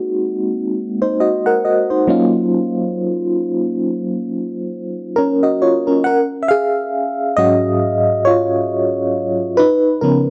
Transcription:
0, 0, Header, 1, 2, 480
1, 0, Start_track
1, 0, Tempo, 882353
1, 1372, Time_signature, 4, 2, 24, 8
1, 5603, End_track
2, 0, Start_track
2, 0, Title_t, "FM electric piano"
2, 0, Program_c, 0, 5
2, 0, Control_c, 0, 64, 127
2, 0, Note_on_c, 0, 56, 87
2, 0, Note_on_c, 0, 58, 75
2, 0, Note_on_c, 0, 60, 75
2, 0, Note_on_c, 0, 63, 79
2, 0, Note_on_c, 0, 66, 95
2, 140, Note_off_c, 0, 56, 0
2, 142, Note_off_c, 0, 58, 0
2, 144, Note_off_c, 0, 60, 0
2, 146, Note_off_c, 0, 63, 0
2, 148, Note_off_c, 0, 66, 0
2, 554, Note_on_c, 0, 72, 62
2, 557, Note_on_c, 0, 63, 52
2, 648, Note_off_c, 0, 72, 0
2, 650, Note_off_c, 0, 63, 0
2, 655, Note_on_c, 0, 75, 66
2, 658, Note_on_c, 0, 66, 56
2, 786, Note_off_c, 0, 75, 0
2, 787, Note_off_c, 0, 66, 0
2, 794, Note_on_c, 0, 78, 76
2, 798, Note_on_c, 0, 70, 62
2, 888, Note_off_c, 0, 78, 0
2, 891, Note_off_c, 0, 70, 0
2, 896, Note_on_c, 0, 75, 64
2, 900, Note_on_c, 0, 66, 53
2, 1026, Note_off_c, 0, 75, 0
2, 1028, Note_off_c, 0, 66, 0
2, 1035, Note_on_c, 0, 72, 60
2, 1037, Note_on_c, 0, 63, 53
2, 1128, Note_on_c, 0, 54, 81
2, 1132, Note_on_c, 0, 58, 79
2, 1133, Note_off_c, 0, 63, 0
2, 1136, Note_on_c, 0, 61, 78
2, 1139, Control_c, 0, 64, 0
2, 1139, Note_on_c, 0, 63, 75
2, 1143, Note_on_c, 0, 65, 90
2, 1218, Control_c, 0, 64, 127
2, 1261, Note_off_c, 0, 72, 0
2, 1906, Note_off_c, 0, 54, 0
2, 1908, Note_off_c, 0, 58, 0
2, 1910, Note_off_c, 0, 61, 0
2, 1911, Note_off_c, 0, 63, 0
2, 1913, Note_off_c, 0, 65, 0
2, 2807, Note_on_c, 0, 70, 88
2, 2820, Note_on_c, 0, 61, 69
2, 2954, Note_on_c, 0, 75, 61
2, 2957, Note_on_c, 0, 66, 53
2, 3048, Note_off_c, 0, 75, 0
2, 3050, Note_off_c, 0, 66, 0
2, 3056, Note_on_c, 0, 73, 68
2, 3060, Note_on_c, 0, 65, 57
2, 3186, Note_off_c, 0, 73, 0
2, 3188, Note_off_c, 0, 65, 0
2, 3188, Note_off_c, 0, 70, 0
2, 3191, Note_off_c, 0, 61, 0
2, 3194, Note_on_c, 0, 70, 62
2, 3198, Note_on_c, 0, 61, 51
2, 3286, Note_on_c, 0, 78, 115
2, 3293, Note_off_c, 0, 70, 0
2, 3299, Control_c, 0, 64, 0
2, 3299, Note_on_c, 0, 70, 85
2, 3363, Note_off_c, 0, 78, 0
2, 3375, Note_off_c, 0, 70, 0
2, 3407, Control_c, 0, 64, 127
2, 3422, Note_off_c, 0, 61, 0
2, 3496, Note_on_c, 0, 76, 80
2, 3527, Note_on_c, 0, 77, 99
2, 3530, Note_off_c, 0, 76, 0
2, 3539, Note_on_c, 0, 68, 78
2, 3988, Note_off_c, 0, 77, 0
2, 3994, Note_off_c, 0, 68, 0
2, 4007, Note_on_c, 0, 75, 106
2, 4012, Note_on_c, 0, 44, 58
2, 4015, Note_on_c, 0, 54, 54
2, 4018, Note_on_c, 0, 61, 64
2, 4020, Note_on_c, 0, 66, 86
2, 4346, Note_off_c, 0, 44, 0
2, 4348, Note_off_c, 0, 54, 0
2, 4349, Note_off_c, 0, 61, 0
2, 4474, Note_off_c, 0, 66, 0
2, 4487, Note_on_c, 0, 73, 102
2, 4500, Note_on_c, 0, 65, 82
2, 4504, Note_off_c, 0, 75, 0
2, 5194, Note_off_c, 0, 65, 0
2, 5207, Note_on_c, 0, 71, 102
2, 5218, Control_c, 0, 64, 0
2, 5219, Note_on_c, 0, 63, 84
2, 5231, Note_off_c, 0, 73, 0
2, 5312, Control_c, 0, 64, 127
2, 5439, Note_off_c, 0, 63, 0
2, 5447, Note_on_c, 0, 70, 87
2, 5452, Note_on_c, 0, 49, 55
2, 5455, Note_on_c, 0, 53, 47
2, 5457, Note_off_c, 0, 71, 0
2, 5458, Note_on_c, 0, 59, 61
2, 5460, Note_on_c, 0, 61, 66
2, 5523, Note_off_c, 0, 70, 0
2, 5536, Note_off_c, 0, 61, 0
2, 5603, Note_off_c, 0, 49, 0
2, 5603, Note_off_c, 0, 53, 0
2, 5603, Note_off_c, 0, 59, 0
2, 5603, End_track
0, 0, End_of_file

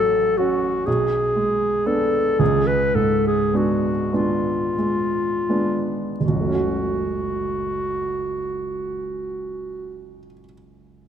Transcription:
0, 0, Header, 1, 3, 480
1, 0, Start_track
1, 0, Key_signature, 3, "minor"
1, 0, Tempo, 961538
1, 678, Tempo, 1041667
1, 1157, Time_signature, 6, 3, 24, 8
1, 1158, Tempo, 1145038
1, 1638, Tempo, 1244813
1, 2118, Tempo, 1425178
1, 4237, End_track
2, 0, Start_track
2, 0, Title_t, "Clarinet"
2, 0, Program_c, 0, 71
2, 0, Note_on_c, 0, 69, 72
2, 187, Note_on_c, 0, 66, 62
2, 195, Note_off_c, 0, 69, 0
2, 431, Note_on_c, 0, 68, 64
2, 438, Note_off_c, 0, 66, 0
2, 911, Note_on_c, 0, 69, 64
2, 918, Note_off_c, 0, 68, 0
2, 1157, Note_on_c, 0, 68, 64
2, 1163, Note_off_c, 0, 69, 0
2, 1271, Note_on_c, 0, 71, 60
2, 1278, Note_off_c, 0, 68, 0
2, 1390, Note_on_c, 0, 69, 58
2, 1397, Note_off_c, 0, 71, 0
2, 1513, Note_off_c, 0, 69, 0
2, 1524, Note_on_c, 0, 68, 55
2, 1646, Note_on_c, 0, 66, 55
2, 1652, Note_off_c, 0, 68, 0
2, 1874, Note_on_c, 0, 65, 54
2, 1880, Note_off_c, 0, 66, 0
2, 2534, Note_off_c, 0, 65, 0
2, 2591, Note_on_c, 0, 66, 48
2, 3929, Note_off_c, 0, 66, 0
2, 4237, End_track
3, 0, Start_track
3, 0, Title_t, "Grand piano"
3, 0, Program_c, 1, 0
3, 0, Control_c, 1, 64, 127
3, 0, Note_on_c, 1, 33, 46
3, 0, Note_on_c, 1, 54, 35
3, 195, Note_on_c, 1, 61, 32
3, 196, Note_on_c, 1, 66, 36
3, 334, Note_off_c, 1, 54, 0
3, 412, Note_off_c, 1, 33, 0
3, 414, Note_off_c, 1, 61, 0
3, 414, Note_off_c, 1, 66, 0
3, 435, Note_on_c, 1, 35, 43
3, 443, Control_c, 1, 64, 0
3, 525, Control_c, 1, 64, 127
3, 679, Note_on_c, 1, 56, 34
3, 910, Note_on_c, 1, 59, 35
3, 911, Note_on_c, 1, 62, 38
3, 1057, Note_off_c, 1, 56, 0
3, 1138, Note_off_c, 1, 59, 0
3, 1139, Note_off_c, 1, 35, 0
3, 1139, Note_off_c, 1, 62, 0
3, 1154, Note_on_c, 1, 37, 45
3, 1167, Control_c, 1, 64, 0
3, 1238, Control_c, 1, 64, 127
3, 1387, Note_on_c, 1, 44, 35
3, 1634, Note_on_c, 1, 56, 28
3, 1634, Note_on_c, 1, 59, 28
3, 1638, Note_on_c, 1, 62, 32
3, 1773, Note_off_c, 1, 44, 0
3, 1853, Note_off_c, 1, 56, 0
3, 1853, Note_off_c, 1, 59, 0
3, 1855, Note_off_c, 1, 62, 0
3, 1863, Note_on_c, 1, 56, 31
3, 1864, Note_on_c, 1, 59, 32
3, 1866, Note_on_c, 1, 62, 32
3, 2099, Note_off_c, 1, 56, 0
3, 2100, Note_off_c, 1, 59, 0
3, 2101, Note_off_c, 1, 62, 0
3, 2115, Note_on_c, 1, 56, 29
3, 2349, Note_off_c, 1, 56, 0
3, 2354, Note_on_c, 1, 56, 29
3, 2356, Note_on_c, 1, 59, 29
3, 2358, Note_on_c, 1, 62, 30
3, 2584, Note_off_c, 1, 37, 0
3, 2584, Note_off_c, 1, 56, 0
3, 2585, Note_off_c, 1, 59, 0
3, 2586, Note_off_c, 1, 62, 0
3, 2594, Note_on_c, 1, 30, 33
3, 2608, Control_c, 1, 64, 0
3, 2619, Note_on_c, 1, 37, 30
3, 2640, Note_on_c, 1, 54, 28
3, 2663, Note_on_c, 1, 57, 27
3, 2686, Note_on_c, 1, 61, 27
3, 2694, Control_c, 1, 64, 127
3, 2709, Note_on_c, 1, 66, 28
3, 3933, Note_off_c, 1, 30, 0
3, 3957, Note_off_c, 1, 37, 0
3, 3978, Note_off_c, 1, 54, 0
3, 4001, Note_off_c, 1, 57, 0
3, 4024, Note_off_c, 1, 61, 0
3, 4047, Note_off_c, 1, 66, 0
3, 4237, End_track
0, 0, End_of_file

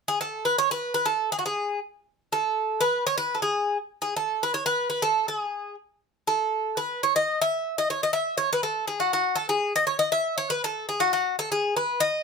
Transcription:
0, 0, Header, 1, 2, 480
1, 0, Start_track
1, 0, Tempo, 495868
1, 67, Time_signature, 2, 2, 24, 8
1, 11841, End_track
2, 0, Start_track
2, 0, Title_t, "Bouzouki"
2, 0, Program_c, 0, 25
2, 79, Note_on_c, 0, 68, 77
2, 185, Note_off_c, 0, 68, 0
2, 201, Note_on_c, 0, 69, 75
2, 418, Note_off_c, 0, 69, 0
2, 437, Note_on_c, 0, 71, 76
2, 556, Note_off_c, 0, 71, 0
2, 565, Note_on_c, 0, 73, 83
2, 680, Note_off_c, 0, 73, 0
2, 689, Note_on_c, 0, 71, 80
2, 901, Note_off_c, 0, 71, 0
2, 913, Note_on_c, 0, 71, 76
2, 1022, Note_off_c, 0, 71, 0
2, 1022, Note_on_c, 0, 69, 75
2, 1273, Note_off_c, 0, 69, 0
2, 1278, Note_on_c, 0, 68, 67
2, 1337, Note_off_c, 0, 68, 0
2, 1342, Note_on_c, 0, 66, 54
2, 1406, Note_off_c, 0, 66, 0
2, 1410, Note_on_c, 0, 68, 70
2, 1729, Note_off_c, 0, 68, 0
2, 2251, Note_on_c, 0, 69, 66
2, 2716, Note_on_c, 0, 71, 81
2, 2735, Note_off_c, 0, 69, 0
2, 2937, Note_off_c, 0, 71, 0
2, 2968, Note_on_c, 0, 73, 89
2, 3070, Note_off_c, 0, 73, 0
2, 3074, Note_on_c, 0, 71, 83
2, 3238, Note_on_c, 0, 69, 45
2, 3250, Note_off_c, 0, 71, 0
2, 3308, Note_off_c, 0, 69, 0
2, 3312, Note_on_c, 0, 68, 64
2, 3647, Note_off_c, 0, 68, 0
2, 3889, Note_on_c, 0, 68, 69
2, 4012, Note_off_c, 0, 68, 0
2, 4031, Note_on_c, 0, 69, 74
2, 4280, Note_off_c, 0, 69, 0
2, 4289, Note_on_c, 0, 71, 77
2, 4391, Note_off_c, 0, 71, 0
2, 4395, Note_on_c, 0, 73, 79
2, 4506, Note_off_c, 0, 73, 0
2, 4510, Note_on_c, 0, 71, 90
2, 4728, Note_off_c, 0, 71, 0
2, 4740, Note_on_c, 0, 71, 72
2, 4858, Note_off_c, 0, 71, 0
2, 4863, Note_on_c, 0, 69, 84
2, 5091, Note_off_c, 0, 69, 0
2, 5113, Note_on_c, 0, 68, 60
2, 5560, Note_off_c, 0, 68, 0
2, 6074, Note_on_c, 0, 69, 69
2, 6553, Note_on_c, 0, 71, 71
2, 6568, Note_off_c, 0, 69, 0
2, 6801, Note_off_c, 0, 71, 0
2, 6807, Note_on_c, 0, 73, 76
2, 6912, Note_off_c, 0, 73, 0
2, 6929, Note_on_c, 0, 75, 84
2, 7168, Note_off_c, 0, 75, 0
2, 7178, Note_on_c, 0, 76, 88
2, 7501, Note_off_c, 0, 76, 0
2, 7533, Note_on_c, 0, 75, 76
2, 7635, Note_off_c, 0, 75, 0
2, 7649, Note_on_c, 0, 73, 63
2, 7764, Note_off_c, 0, 73, 0
2, 7774, Note_on_c, 0, 75, 82
2, 7866, Note_off_c, 0, 75, 0
2, 7870, Note_on_c, 0, 76, 81
2, 8094, Note_off_c, 0, 76, 0
2, 8107, Note_on_c, 0, 73, 78
2, 8221, Note_off_c, 0, 73, 0
2, 8253, Note_on_c, 0, 71, 82
2, 8351, Note_off_c, 0, 71, 0
2, 8355, Note_on_c, 0, 69, 72
2, 8587, Note_off_c, 0, 69, 0
2, 8591, Note_on_c, 0, 68, 69
2, 8703, Note_off_c, 0, 68, 0
2, 8711, Note_on_c, 0, 66, 75
2, 8823, Note_off_c, 0, 66, 0
2, 8840, Note_on_c, 0, 66, 81
2, 9056, Note_on_c, 0, 69, 78
2, 9059, Note_off_c, 0, 66, 0
2, 9174, Note_off_c, 0, 69, 0
2, 9187, Note_on_c, 0, 68, 76
2, 9411, Note_off_c, 0, 68, 0
2, 9444, Note_on_c, 0, 75, 88
2, 9548, Note_off_c, 0, 75, 0
2, 9552, Note_on_c, 0, 73, 76
2, 9666, Note_off_c, 0, 73, 0
2, 9670, Note_on_c, 0, 75, 89
2, 9781, Note_off_c, 0, 75, 0
2, 9796, Note_on_c, 0, 76, 91
2, 10016, Note_off_c, 0, 76, 0
2, 10044, Note_on_c, 0, 73, 87
2, 10160, Note_off_c, 0, 73, 0
2, 10164, Note_on_c, 0, 71, 91
2, 10269, Note_off_c, 0, 71, 0
2, 10300, Note_on_c, 0, 69, 80
2, 10508, Note_off_c, 0, 69, 0
2, 10538, Note_on_c, 0, 68, 70
2, 10646, Note_off_c, 0, 68, 0
2, 10649, Note_on_c, 0, 66, 86
2, 10762, Note_off_c, 0, 66, 0
2, 10773, Note_on_c, 0, 66, 82
2, 10984, Note_off_c, 0, 66, 0
2, 11024, Note_on_c, 0, 69, 81
2, 11129, Note_off_c, 0, 69, 0
2, 11148, Note_on_c, 0, 68, 70
2, 11374, Note_off_c, 0, 68, 0
2, 11389, Note_on_c, 0, 71, 79
2, 11614, Note_off_c, 0, 71, 0
2, 11619, Note_on_c, 0, 75, 96
2, 11841, Note_off_c, 0, 75, 0
2, 11841, End_track
0, 0, End_of_file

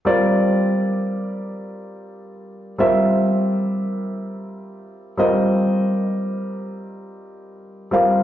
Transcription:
0, 0, Header, 1, 2, 480
1, 0, Start_track
1, 0, Key_signature, -2, "minor"
1, 0, Tempo, 500000
1, 7904, End_track
2, 0, Start_track
2, 0, Title_t, "Grand piano"
2, 0, Program_c, 0, 0
2, 48, Note_on_c, 0, 55, 61
2, 52, Note_on_c, 0, 60, 57
2, 55, Note_on_c, 0, 65, 53
2, 60, Note_on_c, 0, 70, 57
2, 66, Note_on_c, 0, 74, 67
2, 2642, Note_off_c, 0, 55, 0
2, 2644, Note_off_c, 0, 60, 0
2, 2645, Note_off_c, 0, 65, 0
2, 2648, Note_off_c, 0, 70, 0
2, 2651, Note_off_c, 0, 74, 0
2, 2673, Note_on_c, 0, 55, 59
2, 2678, Note_on_c, 0, 60, 57
2, 2680, Note_on_c, 0, 65, 56
2, 2690, Note_on_c, 0, 70, 55
2, 2691, Note_on_c, 0, 76, 67
2, 4941, Note_off_c, 0, 55, 0
2, 4944, Note_off_c, 0, 60, 0
2, 4945, Note_off_c, 0, 65, 0
2, 4949, Note_off_c, 0, 70, 0
2, 4950, Note_off_c, 0, 76, 0
2, 4967, Note_on_c, 0, 55, 60
2, 4974, Note_on_c, 0, 60, 58
2, 4978, Note_on_c, 0, 65, 51
2, 4985, Note_on_c, 0, 70, 55
2, 4987, Note_on_c, 0, 75, 66
2, 7569, Note_off_c, 0, 55, 0
2, 7572, Note_off_c, 0, 60, 0
2, 7574, Note_off_c, 0, 65, 0
2, 7578, Note_off_c, 0, 70, 0
2, 7579, Note_off_c, 0, 75, 0
2, 7595, Note_on_c, 0, 55, 60
2, 7603, Note_on_c, 0, 60, 53
2, 7610, Note_on_c, 0, 65, 52
2, 7615, Note_on_c, 0, 70, 51
2, 7618, Note_on_c, 0, 77, 65
2, 7904, Note_off_c, 0, 55, 0
2, 7904, Note_off_c, 0, 60, 0
2, 7904, Note_off_c, 0, 65, 0
2, 7904, Note_off_c, 0, 70, 0
2, 7904, Note_off_c, 0, 77, 0
2, 7904, End_track
0, 0, End_of_file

